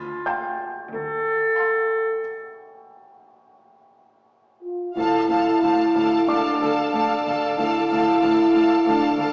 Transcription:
Already playing: D2 F4
0.26 F5 G5 A5 C6 G6
0.92 D2 A4
1.58 F5 A5 C6
4.62 F4
4.94 D2 E4 F5
4.98 A4 A5
5.29 D2 A4 F5 A5
5.62 D2 A3 F5 A5 D6
5.94 D2 A4 F5 A5
6.26 D2 D4 A4 D5 F5 A5 D6 E6
6.60 D2 A4 F5 A5
6.92 D2 A4 F5 A5
7.24 D2 A4 F5 A5
7.56 D2 E4 A4 F5 A5
7.89 D2 A4 F5 A5
7.93 D2
8.22 D2 A4 F5 A5
8.52 D2 A4 F5 A5
8.84 D2 A4 F5 A5
8.88 D4
8.93 F6
9.15 D2 A4 F5
9.19 D2 A5

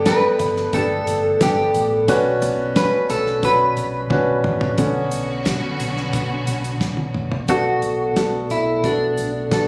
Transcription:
Already playing: G1 G2 B3 D4 G4 A4
0.05 B3 D4 G4 B4, kick, snare, closed hi-hat
0.39 G1, closed hi-hat, floor tom
0.56 snare
0.73 G1 B3 D4 G4 A4, kick, closed hi-hat
1.07 G1, closed hi-hat
1.41 G1 B3 D4 G4 A4, kick, snare, closed hi-hat
1.74 A1, closed hi-hat
2.08 B1 B2 C#4 D4 F#4 B4, kick, closed hi-hat
2.42 B1, closed hi-hat, floor tom
2.76 C#4 D4 F#4 B4, kick, snare, closed hi-hat
3.09 B1 A4, closed hi-hat, floor tom
3.26 snare
3.42 B1 C#4 D4 F#4 B4, kick, closed hi-hat
3.77 B1, closed hi-hat
4.10 B1 C#4 D4 F#4 B4, kick, high tom
4.44 A1, mid tom
4.61 floor tom
4.78 B1 D3 F#3 B3 C#4 F#4, kick, closed hi-hat
5.11 B1, closed hi-hat
5.45 kick, snare, closed hi-hat
5.80 B1, closed hi-hat
5.97 snare
6.13 B1, kick, closed hi-hat
6.47 B1, closed hi-hat
6.64 closed hi-hat
6.81 B1, kick, snare
6.97 high tom
7.14 B1, mid tom
7.32 floor tom
7.48 B1 B2 B3 D4 F#4 A4, kick, closed hi-hat
7.82 B1, closed hi-hat
8.16 B1 B3 D4 F#4 A4, kick, snare, closed hi-hat
8.50 B1 E4, closed hi-hat
8.83 B1 B3 D4 F#4 A4, kick, closed hi-hat
9.18 B1, closed hi-hat
9.51 B1 B3 D4 F#4 A4, kick, snare, closed hi-hat

